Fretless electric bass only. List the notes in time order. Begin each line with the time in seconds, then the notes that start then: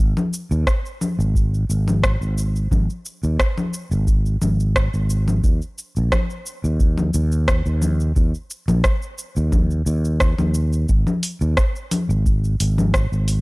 0.00 G#1
0.51 D#2
1.19 G#1
1.70 G#1
2.21 G#1
2.71 G#1
3.23 D#2
3.91 G#1
4.42 G#1
4.94 G#1
5.44 D#2
5.97 A#1
6.64 D#2
7.14 D#2
7.66 D#2
8.16 D#2
8.68 A#1
9.37 D#2
9.86 D#2
10.39 D#2
10.89 G#1
11.41 D#2
12.09 G#1
12.60 G#1
13.12 G#1